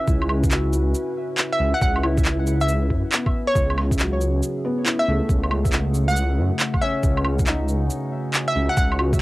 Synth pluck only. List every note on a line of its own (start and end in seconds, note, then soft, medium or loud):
0.00 0.22 E5 medium
1.52 2.12 E5 medium
1.74 1.79 F#5 medium
1.82 1.91 F#5 medium
2.61 3.21 E5 loud
3.47 3.61 C#5 medium
4.99 5.59 E5 medium
6.08 6.31 F#5 medium
6.82 7.18 E5 medium
8.48 9.07 E5 medium
8.69 8.74 F#5 medium
8.77 8.86 F#5 medium